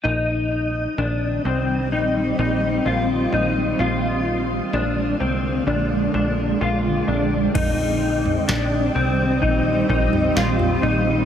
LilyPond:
<<
  \new Staff \with { instrumentName = "Clean electric guitar" } { \time 4/4 \key ees \major \tempo 4 = 64 ees'4 d'8 c'8 ees'8 ees'8 f'8 ees'8 | f'4 d'8 c'8 d'8 d'8 f'8 d'8 | ees'4 d'8 c'8 ees'8 ees'8 f'8 ees'8 | }
  \new Staff \with { instrumentName = "Ambient pad" } { \clef bass \time 4/4 \key ees \major << { c'1 | bes2 c'2 | c'1 | } \\ { <ees g>1 | <d aes>1 | <ees g>1 | } >> }
  \new Staff \with { instrumentName = "Analog synth bass" } { \clef bass \time 4/4 \key ees \major bes,,4 bes,,8 c,8 bes,,8 bes,,8 bes,,8 bes,,8 | bes,,4 bes,,8 c,8 bes,,8 bes,,8 bes,,8 bes,,8 | bes,,4 bes,,8 c,8 bes,,8 bes,,8 bes,,8 bes,,8 | }
  \new DrumStaff \with { instrumentName = "Drums" } \drummode { \time 4/4 r4 r4 r4 r4 | r4 r4 r4 r4 | <cymc bd tomfh>8. tomfh16 sn4 bd8 bd16 tomfh16 sn16 tomfh8. | }
>>